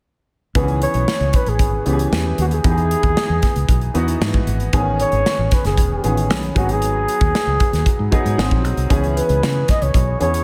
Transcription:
0.55 0.85 C#2 loud
0.55 1.44 E3 medium
0.55 1.44 B3 medium
0.55 1.45 C#4 medium
0.55 1.45 G#4 medium
0.55 kick medium
0.55 closed hi-hat medium
0.68 closed hi-hat soft
0.82 1.37 C#5 medium
0.82 closed hi-hat medium
0.94 1.04 B1 medium
0.94 closed hi-hat soft
1.08 snare loud
1.20 1.30 C#2 medium
1.20 closed hi-hat soft
1.33 1.50 B4 medium
1.33 kick medium
1.33 closed hi-hat medium
1.46 1.59 A1 medium
1.46 2.13 G#4 medium
1.46 closed hi-hat soft
1.59 1.79 G#1 medium
1.59 kick medium
1.59 closed hi-hat medium
1.86 2.06 C#2 medium
1.86 2.53 E3 medium
1.86 2.53 B3 medium
1.86 2.53 C#4 medium
1.86 1.93 G4 medium
1.86 closed hi-hat soft
1.93 2.56 G#4 medium
1.99 closed hi-hat soft
2.12 2.32 E2 medium
2.12 snare medium
2.38 2.58 D#2 medium
2.38 2.45 F#4 medium
2.38 closed hi-hat medium
2.51 4.05 G#4 loud
2.51 closed hi-hat soft
2.64 2.94 E2 medium
2.64 3.53 E3 medium
2.64 3.53 B3 medium
2.64 3.54 D#4 medium
2.64 2.71 G4 medium
2.64 kick loud
2.64 closed hi-hat medium
2.71 3.57 G#4 medium
2.78 closed hi-hat soft
2.91 closed hi-hat medium
3.03 3.13 D#2 medium
3.03 kick medium
3.03 closed hi-hat soft
3.17 snare loud
3.30 3.40 E2 medium
3.42 kick medium
3.42 snare soft
3.42 closed hi-hat medium
3.56 3.66 C#2 medium
3.56 closed hi-hat soft
3.69 3.89 B1 medium
3.69 kick medium
3.69 closed hi-hat medium
3.81 closed hi-hat soft
3.94 4.15 E2 medium
3.94 4.61 E3 medium
3.94 4.62 B3 medium
3.94 4.62 D#4 medium
3.94 4.62 F#4 medium
3.94 closed hi-hat medium
4.08 closed hi-hat soft
4.21 4.41 G#2 medium
4.21 snare loud
4.34 kick medium
4.47 4.67 G#1 medium
4.47 closed hi-hat medium
4.60 closed hi-hat soft
4.73 5.03 A1 medium
4.73 5.62 D#3 medium
4.73 5.62 B3 medium
4.73 5.63 C#4 medium
4.73 5.63 G#4 medium
4.73 kick loud
4.73 closed hi-hat medium
5.00 5.55 C#5 loud
5.00 closed hi-hat medium
5.12 5.22 G#1 medium
5.12 closed hi-hat soft
5.26 snare medium
5.39 5.49 A1 medium
5.51 5.66 B4 medium
5.51 kick medium
5.51 snare soft
5.51 closed hi-hat medium
5.65 5.78 F#1 medium
5.65 6.27 G#4 medium
5.65 snare soft
5.65 closed hi-hat soft
5.77 5.97 E1 medium
5.77 kick medium
5.77 closed hi-hat medium
6.03 6.30 A1 medium
6.03 6.56 D#3 medium
6.03 6.55 B3 medium
6.03 6.56 C#4 medium
6.03 6.55 G#4 medium
6.03 closed hi-hat medium
6.17 closed hi-hat soft
6.30 6.50 B1 medium
6.30 snare loud
6.43 closed hi-hat soft
6.55 7.06 G#1 medium
6.55 7.45 F#3 medium
6.55 7.45 B3 medium
6.55 7.45 D#4 medium
6.55 6.72 F#4 medium
6.55 7.45 G#4 medium
6.55 kick medium
6.55 closed hi-hat medium
6.69 8.26 G#4 loud
6.69 closed hi-hat soft
6.82 closed hi-hat medium
7.08 closed hi-hat medium
7.21 7.31 D#2 medium
7.21 kick medium
7.21 closed hi-hat soft
7.35 snare loud
7.47 7.57 C#2 medium
7.60 kick medium
7.60 closed hi-hat medium
7.73 7.83 D#2 medium
7.73 snare soft
7.73 closed hi-hat soft
7.86 kick medium
7.86 closed hi-hat medium
7.99 8.09 G#2 medium
8.12 8.36 F#3 medium
8.12 8.38 B3 medium
8.12 8.37 D#4 medium
8.12 8.37 G#4 medium
8.12 8.37 D#5 medium
8.12 kick medium
8.12 closed hi-hat soft
8.25 8.35 G#2 medium
8.25 closed hi-hat soft
8.38 8.48 G#1 medium
8.38 8.83 F#3 medium
8.38 8.83 C4 medium
8.38 8.83 D#4 medium
8.38 8.83 G#4 medium
8.38 8.87 F#5 medium
8.38 snare loud
8.51 8.64 A#1 medium
8.51 kick medium
8.64 8.74 B1 medium
8.64 closed hi-hat medium
8.77 8.87 C2 medium
8.77 closed hi-hat soft
8.90 9.20 C#2 medium
8.90 9.79 E3 medium
8.90 9.79 B3 medium
8.90 9.79 C#4 medium
8.90 9.80 G#4 medium
8.90 kick medium
8.90 closed hi-hat medium
9.04 closed hi-hat soft
9.17 9.72 B4 medium
9.17 closed hi-hat medium
9.29 9.40 C#2 medium
9.29 closed hi-hat soft
9.43 9.63 C#3 medium
9.43 snare loud
9.68 9.84 D#5 medium
9.68 kick medium
9.68 snare soft
9.68 closed hi-hat medium
9.82 9.92 C#2 medium
9.82 10.21 C#5 medium
9.82 closed hi-hat soft
9.94 10.14 B1 medium
9.94 kick medium
9.94 closed hi-hat medium
10.19 10.41 E2 medium
10.19 10.44 E3 medium
10.19 10.44 B3 medium
10.19 10.44 C#4 medium
10.19 10.44 G#4 medium
10.19 10.44 C#5 medium
10.19 closed hi-hat medium
10.34 closed hi-hat medium

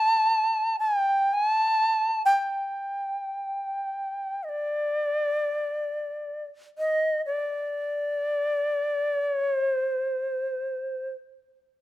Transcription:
0.00 0.77 A5 medium
0.79 0.97 G#5 medium
0.97 1.35 G5 medium
1.34 1.48 G#5 medium
1.48 2.25 A5 medium
2.25 4.45 G5 medium
4.44 4.51 D#5 soft
4.49 6.44 D5 medium
6.78 7.22 D#5 medium
7.26 9.23 D5 medium
9.23 9.71 C#5 medium
9.71 11.10 C5 medium

